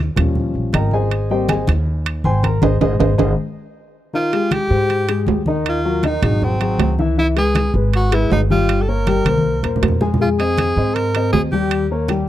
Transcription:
Already playing: D#2
0.16 D#2 F3 G3 C#4, high conga, low conga, high timbale
0.35 high conga, low conga
0.54 A#1, high conga
0.73 G#1 A#4 D#5 G5 A#5, high conga, high timbale
0.91 G#4 C5 D#5 G#5, high conga
1.10 high conga, high timbale
1.30 G3 A#3 C4 G4 C5 D#5 G5, high conga
1.49 G#4 C5 D#5 G#5, high conga, high timbale
1.67 D#2, high conga, high timbale
1.86 high conga
2.05 high conga, high timbale
2.24 G#1 C5 G5 G#5 C6, high conga
2.43 A#4 A#5, high conga, high timbale
2.62 G#1 G#4 C5 D#5, high conga, high timbale
2.81 G#1 G#4 C5 D#5, high conga, high timbale
2.99 G#1 G#4 C5 D#5, high conga, high timbale
3.18 G#1 G#4 C5 D#5, high conga, high timbale
4.13 D#3 D#4 F4 D#5, high conga
4.33 G#3 G4 G#4, high conga, high timbale
4.51 G4, high conga, high timbale, low timbale
4.70 G#2 G#3 G4 C5
4.90 high conga, high timbale
5.08 G#3 G4 G#4, high conga, high timbale
5.27 D#2, high conga, low timbale
5.46 D#3 D#4 D#5, high conga
5.65 F4, high conga, high timbale
5.84 F#3 F#4 A#4, high conga
6.03 D#3 D#4 D#5, high conga, high timbale, low timbale
6.22 G#1 F#3 F#4 G#4, high conga, low conga, high timbale
6.42 C4, high conga, low conga
6.60 F#3 F#4 G#4, high conga, high timbale
6.79 C#2, high conga, high timbale, low timbale
6.99 E3 E4 E5, high conga
7.18 E3 E4 E5, high conga
7.36 G#3 G#4 B4, high conga, high timbale
7.55 high conga, high timbale, low timbale
7.74 G#1 G#3 G#4 B4
7.93 F#4, high conga, high timbale
8.12 G#3 E4 G#4 B4, high conga, high timbale
8.30 G1 D#4, high conga, low timbale
8.50 G3 F4 G4 G5, high conga
8.69 high conga, high timbale
8.81 A4
8.88 A#3 A#4 C#5, high conga
9.07 G3 G4 G5, high conga, high timbale, low timbale
9.25 C2 A#3 A#4 C5, high conga, high timbale
9.38 high conga
9.63 E2 A#3 A#4 C5, low conga, high timbale
9.76 low conga
9.82 F2, high timbale, low timbale
9.88 low conga
10.01 G#3 G#4 G#5, low conga
10.14 low conga
10.20 G#3 F4 G#4 G#5, high conga
10.39 C4 G#4 C5 D#5, high conga, high timbale
10.58 high conga, high timbale, low timbale
10.76 G#2 C4 C5 D#5
10.95 A#4, high conga, high timbale
11.15 C4 C5 D#5, high conga, high timbale
11.33 D#2 G#4, high conga, low timbale
11.52 G3 G4 G5, high conga
11.71 high conga, high timbale
11.90 A#3 A#4 C#5, high conga
12.08 G3 G4 G5, high conga, high timbale, low timbale

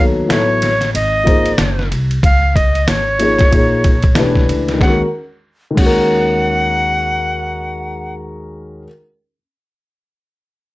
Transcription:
Already playing: D#2 F#3 B3 D#4
0.00 A4 C#5
0.28 A1 F#3 B3 E4 A4 C#5, snare, hi-hat pedal, ride
0.62 snare, ride
0.81 snare, ride
0.94 G#1 D#5, ride
1.24 F3 A#3 D#4 G#4, kick, ride
1.28 C5
1.46 ride
1.58 F#1, snare, hi-hat pedal, ride
1.79 snare
1.91 C2, ride
2.11 ride
2.23 C#2 F5, kick, ride
2.56 D#5, kick, ride
2.75 ride
2.88 G#1 C#5, snare, hi-hat pedal, ride
3.19 F3 A#3 D#4 G#4 C#5, ride
3.39 kick, snare, ride
3.51 A#1 F3 A#3 D#4 G#4 C#5, kick, ride
3.84 kick, ride
4.03 kick, ride
4.15 E1 E3 A3 D4 G4, snare, hi-hat pedal, ride
4.19 B4
4.36 kick, snare
4.49 C#2, ride
4.68 snare, ride
4.74 D#3
4.78 D#2 G#3 C#4 F#5, kick, snare
4.85 F#4 A#4
5.71 D#3 G#3
5.77 D#2 C#4 F#5, kick, crash
5.82 F#4
5.86 A#4

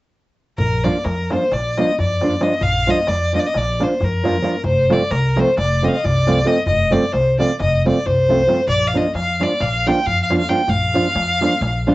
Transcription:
0.58 A#1 A#4, darbuka dum
0.71 darbuka tek
0.84 F3 A#3 D4 F4 D5, darbuka tek
1.04 F2 A#4, darbuka tek
1.18 darbuka tek
1.30 F3 A#3 D4 F4 C5, darbuka tek
1.52 A#1 D5, darbuka tek
1.78 F3 A#3 D4 F4 D#5, darbuka tek
1.99 F2 D5, darbuka dum
2.21 F3 A#3 D4 F4, darbuka tek
2.41 F3 A#3 D4 F4 D#5, darbuka tek
2.61 A#1 F5, darbuka dum
2.75 darbuka tek
2.87 F3 A#3 D4 F4 D#5
3.07 F2 D5, darbuka tek
3.21 darbuka tek
3.33 F3 A#3 D4 F4 D#5
3.39 D5
3.46 D#5
3.54 A#1 D5, darbuka tek
3.80 F3 A#3 D4 F4 C5, darbuka tek
4.00 F2 A#4, darbuka dum
4.24 F3 A#3 D4 F4, darbuka tek
4.42 F3 A#3 D4 F4, darbuka tek
4.64 F1 C5, darbuka dum
4.77 darbuka tek
4.90 F3 A3 C4 F4 D5, darbuka tek
5.11 C2 A#4, darbuka tek
5.24 darbuka tek
5.36 F3 A3 C4 F4 C5, darbuka tek
5.57 F1 D5, darbuka tek
5.82 F3 A3 C4 F4 D#5
5.87 F5
5.94 D#5
6.04 C2 D5, darbuka dum
6.27 F3 A3 C4 F4, darbuka tek
6.45 F3 A3 C4 F4 D#5, darbuka tek
6.66 F1 D#5, darbuka dum
6.80 darbuka tek
6.91 F3 A3 C4 F4 D5, darbuka tek
7.04 darbuka tek
7.12 C2 C5, darbuka tek
7.28 darbuka tek
7.38 F3 A3 C4 F4 D5, darbuka tek
7.60 F1 D#5, darbuka tek, darbuka dum
7.73 darbuka tek
7.85 F3 A3 C4 F4 D5, darbuka tek
8.06 C2 C5, darbuka dum
8.29 F3 A3 C4 F4, darbuka tek
8.47 F3 A3 C4 F4, darbuka tek
8.68 A#1 D5, darbuka dum
8.82 darbuka tek
8.87 F5
8.94 F3 A#3 D4 F4 D#5, darbuka tek
9.14 F2 F5, darbuka tek
9.28 darbuka tek
9.40 F3 A#3 D4 F4 D5, darbuka tek
9.60 A#1 F5, darbuka tek
9.87 F3 A#3 D4 F4 G5, darbuka tek
10.06 F2 F5, darbuka dum
10.22 F5
10.30 F3 A#3 D4 F4, darbuka tek
10.37 F5
10.49 F3 A#3 D4 F4 G5, darbuka tek
10.68 A#1 F5, darbuka dum
10.81 darbuka tek
10.94 F3 A#3 D4 F4, darbuka tek
11.15 F2, darbuka tek
11.29 darbuka tek
11.41 F3 A#3 D4 F4, darbuka tek
11.61 A#1, darbuka tek
11.87 F3 A#3 D4 F4, darbuka tek

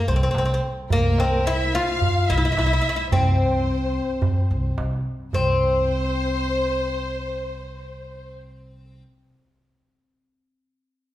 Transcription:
0.07 C2 C4
0.16 C4
0.23 C4
0.31 C4, darbuka tek
0.35 C2 C4
0.45 C4
0.54 C4
0.90 C2 A#3 A#4, darbuka dum
1.18 C4, darbuka tek
1.32 darbuka ka
1.45 E4 E5
1.60 darbuka ka
1.73 F4 F5
2.01 darbuka dum
2.28 C2 E4 E5
2.37 E4
2.45 E4
2.52 E4
2.57 C2 E4, darbuka tek
2.66 E4
2.73 E4
2.81 E4
2.89 E4
2.96 E4
3.12 C2 C4 C5, darbuka dum
3.26 darbuka ka
3.54 darbuka ka
3.68 darbuka ka
3.81 darbuka ka
4.22 darbuka dum
4.36 darbuka ka
4.51 C2, darbuka ka
4.64 darbuka ka
4.78 C2, darbuka tek
5.33 C2 C4 C5, darbuka dum

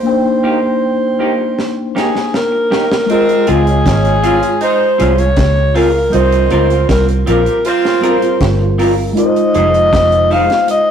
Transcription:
Already playing: C5
0.03 A#3 D4 G5
0.09 D#4 C5
0.43 A#3 D#4 G4
1.19 A#3 D#4 G4
1.39 muted clean electric guitar stroke
1.59 snare
1.95 A#3 D#4 G4 G#4, snare
2.15 snare
2.34 A#4, snare
2.52 muted clean electric guitar stroke
2.71 A#3 D#4 G4, snare
2.92 snare
3.06 F3 G#3 C4 F4, closed hi-hat
3.12 G#4 A#4
3.29 closed hi-hat
3.47 C#2 C4 F4 G#4, closed hi-hat
3.67 F3 G#3 C#4, closed hi-hat
3.86 G#1 F3 G#3 C#4, kick, snare, closed hi-hat
4.05 closed hi-hat
4.23 F3 C4 C#4 F4 G#4, closed hi-hat
4.43 muted clean electric guitar stroke, closed hi-hat
4.61 G#3 C4 D#4 C5, closed hi-hat
4.98 C2 F3 C4 C#4 F4 G#4, closed hi-hat
5.18 C#5, closed hi-hat
5.37 C#2, kick, snare, closed hi-hat
5.75 C4 F4 G#4 A#4, open hi-hat
6.10 G3 A#3 C4 D#4, closed hi-hat
6.14 C2 F4 A#4 C5
6.32 closed hi-hat
6.50 C#2 C4 F4 A#4 C5, closed hi-hat
6.70 A#3 C4 F4, closed hi-hat
6.89 C2 A#3 C4 F4 A#4, kick, snare, closed hi-hat
7.08 closed hi-hat
7.26 A#1 A#3 C4 F4 G4 A#4, closed hi-hat
7.46 muted clean electric guitar stroke, closed hi-hat
7.65 A#3 C4 F4 C5, closed hi-hat
7.85 snare
8.01 G3 C4 F4 G#4 A#4, closed hi-hat
8.10 A#4
8.22 closed hi-hat
8.41 G1, kick, snare, closed hi-hat
8.60 muted clean electric guitar stroke
8.78 C4 F4 A#4, open hi-hat
9.13 G#3 D#4 F4, closed hi-hat
9.19 A#4 D#5
9.26 C5
9.36 closed hi-hat
9.54 F1 D#4 G#4 C5, closed hi-hat
9.74 closed hi-hat
9.93 F1, kick, snare, closed hi-hat
10.12 closed hi-hat
10.31 D#4 G#4 C5 F5, open hi-hat
10.50 muted clean electric guitar stroke, snare, closed hi-hat
10.68 D#5, closed hi-hat

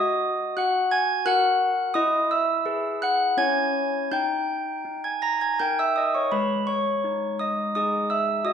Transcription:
Already playing: F#4 D#5 D#6
0.57 F#4 F#5 F#6
0.91 G#5 G#6
1.26 F#4 A#4 F#5 F#6
1.94 E4 D#5 D#6
2.31 E5 E6
2.65 G#4 B4
3.02 F#5 F#6
3.37 C#4 E4 C#5 G#5 G#6
4.12 D#4 G5 G6
4.85 D#4
5.04 G#5 G#6
5.22 A#5 A#6
5.41 G#5 G#6
5.60 D#4 A#4 G5 G6
5.79 E5 E6
5.96 D#5 D#6
6.14 C#5 C#6
6.32 G#3 B4 B5
6.67 C#5 C#6
7.04 D#4
7.39 D#5 D#6
7.75 D#4 G#4 D#5 D#6
8.10 E5 E6
8.45 F#4 D#5 D#6

